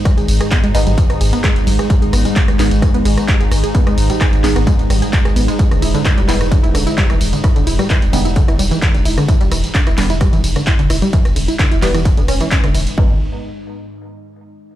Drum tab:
RD |--x---x---x---x-|--x---x---x---x-|--x---x---x---x-|--x---x---x---x-|
HH |xxoxxxoxxxoxxxox|xxoxxxoxxxoxxxox|xxoxxxoxxxoxxxox|xxoxxxoxxxoxxxox|
TB |xxxxxxxxxxxxxxxx|xxxxxxxxxxxxxxxx|xxxxxxxxxxxxxxxx|xxxxxxxxxxxxxxxx|
CP |----x-------x---|----x-x-----x---|----x-x-----x---|----x-x-----x---|
SD |r--r-----r--r--r|--r--r--r--r--r-|-r--r--r--r--r--|-r--r--r--r--r--|
BD |o---o---o---o---|o---o---o---o---|o---o---o---o---|o---o---o---o---|

RD |--x---x---x---x-|--x---x---x---x-|--x---x---x---x-|----------------|
HH |xxoxxxoxxxoxxxox|xxoxxxoxxxoxxxox|xxoxxxoxxxoxxxox|----------------|
TB |xxxxxxxxxxxxxxxx|xxxxxxxxxxxxxxxx|xxxxxxxxxxxxxxxx|----------------|
CP |----x-------x---|----x-x-----x---|----x-x-----x---|----------------|
SD |r--r-----r--r--r|--r--r--r--r--r-|-r--r--r--r--r--|----------------|
BD |o---o---o---o---|o---o---o---o---|o---o---o---o---|o---------------|